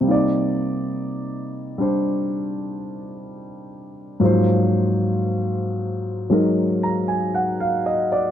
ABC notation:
X:1
M:4/4
L:1/16
Q:"Swing" 1/4=58
K:Cm
V:1 name="Grand piano"
z16 | z8 z2 b a _g f e d |]
V:2 name="Grand piano"
[C,G,B,Ed]6 [G,Dc]8- [G,Dc]2 | [A,,F,_G,B,c]8 [G,A,EB]8 |]